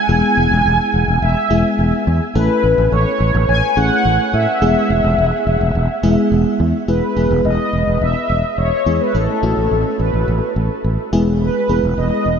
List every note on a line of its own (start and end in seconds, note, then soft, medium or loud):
0.09 0.21 E1 loud
0.09 1.08 G#3 medium
0.09 1.08 B3 medium
0.09 1.08 E4 medium
0.09 1.08 G#4 medium
0.09 1.18 G#5 loud
0.37 0.49 E1 loud
0.51 0.63 E1 loud
0.66 0.77 E1 loud
0.94 1.06 E1 loud
1.08 1.20 E1 medium
1.22 1.34 E1 loud
1.22 2.03 E5 medium
1.50 1.62 E1 loud
1.50 2.25 G#3 medium
1.50 2.25 B3 medium
1.50 2.25 E4 medium
1.50 2.25 G#4 medium
1.79 1.91 E1 loud
2.07 2.19 E2 loud
2.35 2.47 A1 loud
2.35 3.34 A3 medium
2.35 3.34 C#4 medium
2.35 3.34 E4 medium
2.35 3.34 A4 medium
2.35 2.88 B4 loud
2.64 2.76 A1 loud
2.78 2.90 A1 loud
2.92 3.04 A1 loud
2.92 3.50 C#5 loud
3.20 3.32 A1 loud
3.35 3.46 A1 loud
3.49 3.60 A1 loud
3.49 3.78 G#5 loud
3.77 3.89 A1 loud
3.77 4.51 A3 medium
3.77 4.51 C#4 medium
3.77 4.51 E4 medium
3.77 4.51 G#4 medium
3.77 4.35 F#5 loud
4.05 4.17 A1 loud
4.34 4.45 A2 loud
4.34 6.28 E5 loud
4.62 4.74 E1 loud
4.62 5.61 G#3 medium
4.62 5.61 B3 medium
4.62 5.61 E4 medium
4.62 5.61 G#4 medium
4.90 5.02 E1 loud
5.04 5.16 E1 loud
5.18 5.30 E1 loud
5.47 5.59 E1 loud
5.61 5.73 E1 loud
5.75 5.87 E1 loud
6.03 6.15 E1 loud
6.03 6.77 G#3 medium
6.03 6.77 B3 medium
6.03 6.77 E4 medium
6.03 6.77 G#4 loud
6.32 6.43 E1 loud
6.60 6.72 E2 loud
6.88 7.00 E1 loud
6.88 7.13 G#3 medium
6.88 7.13 B3 medium
6.88 7.13 E4 medium
6.88 7.13 G#4 medium
6.88 7.47 B4 loud
7.17 7.28 E1 medium
7.17 8.15 G#3 medium
7.17 8.15 B3 medium
7.17 8.15 E4 medium
7.17 8.15 G#4 medium
7.31 7.43 E1 loud
7.45 7.57 E1 loud
7.45 8.03 D#5 loud
7.73 7.85 E1 medium
7.87 7.99 E1 medium
8.01 8.13 E1 loud
8.01 8.60 E5 loud
8.30 8.42 E1 medium
8.58 8.70 E1 loud
8.58 9.02 C#5 loud
8.86 8.98 E2 medium
8.86 9.11 G#3 medium
8.86 9.11 B3 medium
8.86 9.11 E4 medium
8.86 9.11 G#4 medium
9.00 9.15 B4 medium
9.14 9.26 A1 loud
9.14 9.39 A3 medium
9.14 9.39 C#4 medium
9.14 9.39 E4 medium
9.14 10.02 A4 loud
9.14 9.39 A4 medium
9.43 9.55 A1 loud
9.43 10.42 A3 medium
9.43 10.42 C#4 medium
9.43 10.42 E4 medium
9.43 10.42 F#4 medium
9.57 9.69 A1 medium
9.71 9.83 A1 medium
9.99 10.11 A1 loud
9.99 10.52 B4 medium
10.14 10.26 A1 medium
10.28 10.40 A1 loud
10.56 10.68 A1 loud
10.84 10.96 A1 medium
11.13 11.48 E1 medium
11.13 11.62 G#3 medium
11.13 11.62 B3 medium
11.13 11.62 E4 medium
11.13 11.62 G#4 loud
11.41 11.99 B4 loud
11.69 11.81 E1 medium
11.69 12.39 G#3 medium
11.69 12.39 B3 medium
11.69 12.39 E4 medium
11.69 12.39 G#4 medium
11.84 11.95 E1 medium
11.98 12.10 E1 loud
11.98 12.39 D#5 loud
12.26 12.38 E1 medium